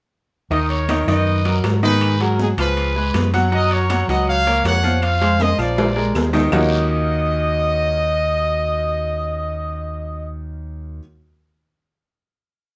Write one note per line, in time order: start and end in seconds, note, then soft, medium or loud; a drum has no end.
0.50 1.03 D#2 medium
0.50 0.82 D#3 medium
0.50 0.82 D#4 medium
0.50 0.69 A#4 medium
0.50 0.69 D#5 medium
0.50 0.82 D#5 medium
0.50 high conga soft
0.50 high timbale medium
0.50 long guiro medium
0.69 1.05 A#4 medium
0.69 1.05 C#5 medium
0.69 high conga soft
0.69 high timbale medium
0.89 1.05 D#3 medium
0.89 1.05 D#4 medium
0.89 1.05 D#5 medium
0.89 high conga medium
0.89 high timbale medium
0.89 low timbale medium
0.89 short guiro medium
0.89 claves medium
1.07 1.60 F#2 medium
1.07 1.38 D#3 medium
1.07 1.39 D#4 medium
1.07 1.61 B4 medium
1.07 1.39 D#5 medium
1.07 1.60 D#5 medium
1.07 high conga soft
1.07 high timbale medium
1.07 short guiro medium
1.27 high conga soft
1.27 long guiro medium
1.45 1.76 F#3 medium
1.45 1.76 F#4 medium
1.45 1.76 A#4 medium
1.45 high conga soft
1.45 high timbale medium
1.64 2.52 G#2 medium
1.64 high conga soft
1.64 high timbale medium
1.64 low timbale medium
1.64 short guiro medium
1.64 claves medium
1.83 2.14 D#3 medium
1.83 2.14 D#4 medium
1.83 2.19 G#4 medium
1.83 2.18 B4 loud
1.83 2.14 D#5 medium
1.83 high conga medium
1.83 short guiro medium
2.01 high timbale medium
2.01 long guiro medium
2.01 claves medium
2.20 2.51 F#3 medium
2.20 2.52 F#4 medium
2.20 2.39 F#4 medium
2.20 2.52 G#4 medium
2.20 2.39 A#4 medium
2.20 high conga soft
2.20 high timbale medium
2.39 2.50 D#4 medium
2.39 2.49 G#4 medium
2.39 high conga medium
2.39 low timbale medium
2.39 short guiro medium
2.57 3.10 C#2 medium
2.57 2.89 F3 medium
2.57 2.89 F4 medium
2.57 3.30 G#4 medium
2.57 3.30 B4 medium
2.57 2.89 F5 medium
2.57 high timbale medium
2.57 short guiro medium
2.57 claves medium
2.77 high conga soft
2.77 high timbale medium
2.77 long guiro medium
2.96 3.27 G#3 medium
2.96 3.27 G#4 medium
2.96 3.27 B4 medium
2.96 high conga soft
3.14 4.02 F#2 medium
3.14 high conga medium
3.14 high timbale medium
3.14 low timbale medium
3.14 short guiro medium
3.14 claves medium
3.34 3.49 F#3 medium
3.34 3.49 F#4 medium
3.34 3.49 F#5 medium
3.34 high conga medium
3.34 high timbale medium
3.34 short guiro medium
3.52 3.83 F#3 medium
3.52 3.83 F#4 medium
3.52 3.71 A#4 medium
3.52 3.70 D#5 loud
3.52 3.83 F#5 medium
3.52 high conga soft
3.52 high timbale medium
3.52 long guiro medium
3.71 4.10 A#4 medium
3.71 4.09 C#5 loud
3.71 high conga soft
3.71 high timbale medium
3.90 4.05 F#3 medium
3.90 4.05 F#4 medium
3.90 4.06 F#5 medium
3.90 high conga medium
3.90 high timbale medium
3.90 low timbale medium
3.90 short guiro medium
3.90 claves medium
4.08 4.61 C#2 medium
4.08 4.40 F#3 medium
4.08 4.40 F#4 medium
4.08 4.27 B4 medium
4.08 4.27 D#5 medium
4.08 4.40 F#5 medium
4.08 high conga soft
4.08 high timbale medium
4.08 short guiro medium
4.28 4.63 C#5 medium
4.28 4.63 F5 loud
4.28 high conga soft
4.28 long guiro medium
4.46 4.77 A#3 medium
4.46 4.77 A#4 medium
4.46 4.78 C#5 medium
4.46 high conga soft
4.46 high timbale medium
4.64 5.52 F2 medium
4.64 5.00 C#5 medium
4.64 5.01 F#5 loud
4.64 high conga soft
4.64 high timbale medium
4.64 low timbale medium
4.64 short guiro medium
4.64 claves medium
4.83 5.14 F3 medium
4.83 5.15 F4 medium
4.83 5.15 F5 medium
4.83 high conga medium
4.83 short guiro medium
5.02 5.40 C5 medium
5.02 5.40 F5 loud
5.02 high conga soft
5.02 high timbale medium
5.02 long guiro medium
5.02 claves medium
5.21 5.52 G#3 medium
5.21 5.52 G#4 medium
5.21 5.52 C5 medium
5.21 high conga soft
5.21 high timbale medium
5.40 5.60 C5 medium
5.40 5.60 D#5 loud
5.40 high conga medium
5.40 high timbale medium
5.40 short guiro medium
5.58 6.11 A#1 medium
5.58 5.89 F3 medium
5.58 5.90 F4 medium
5.58 6.12 A#4 medium
5.58 6.12 D5 medium
5.58 5.90 F5 medium
5.58 short guiro medium
5.58 claves medium
5.77 high conga soft
5.77 low timbale loud
5.77 long guiro medium
5.96 6.27 G#3 medium
5.96 6.27 G#4 medium
5.96 6.27 A#4 medium
5.96 high conga soft
6.14 6.48 D#2 medium
6.14 high conga medium
6.14 low timbale loud
6.14 short guiro medium
6.14 claves medium
6.33 6.49 D#3 medium
6.33 6.49 D#4 medium
6.33 6.49 D#5 medium
6.33 high conga medium
6.33 low timbale medium
6.33 short guiro medium
6.52 10.99 D#2 medium
6.52 10.99 D#3 medium
6.52 10.99 A#3 medium
6.52 10.99 C#4 medium
6.52 10.99 D#4 medium
6.52 11.00 F4 medium
6.52 11.00 F#4 medium
6.52 10.30 D#5 medium
6.52 low conga medium
6.52 low timbale medium
6.52 long guiro medium
6.52 claves medium